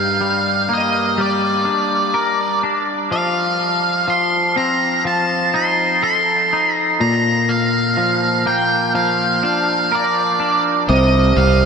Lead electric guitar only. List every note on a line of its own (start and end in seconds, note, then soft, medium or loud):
0.00 0.74 F5 medium
0.73 1.21 D#5 soft
1.21 2.61 D5 soft
3.12 4.13 F5 medium
4.10 4.57 C6 medium
4.58 5.03 A#5 medium
5.07 5.55 A5 medium
5.56 6.02 C6 medium
6.04 6.75 C6 medium
6.75 7.00 A#5 medium
7.01 7.51 A#5 medium
7.49 8.47 F5 medium
8.47 8.92 G5 medium
8.95 9.44 F5 medium
9.45 9.94 F5 medium
9.95 10.62 D5 soft
10.89 11.39 D#5 medium
11.37 11.65 F5 medium